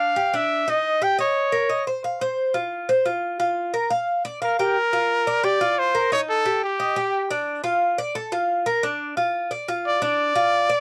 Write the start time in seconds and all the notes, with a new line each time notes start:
Already playing: D4 F5
0.16 G4
0.34 D4 E5
0.68 D#4 D#5
1.02 G4 G5
1.19 C#5 D#5
1.52 A#4
1.69 D#5
1.87 C5
2.04 F5
2.21 C5
2.54 F4
2.89 C5
3.06 F4
3.40 F4
3.74 A#4
3.90 F5
4.25 D5
4.42 A#4 F5
4.59 G4 A#4
4.93 F4
5.27 D5
5.43 G4 D5
5.61 F4
5.79 C5
5.95 A#4
6.12 D#4 C#5
6.30 A4
6.46 G4
6.64 G4
6.80 D#5
6.96 G4
7.31 D4
7.64 F4
7.98 D5
8.15 A4
8.32 F4
8.66 A#4
8.83 D4
9.17 F4
9.51 D5
9.68 F4
9.87 D5
10.02 D4 D5
10.36 F4
10.69 D5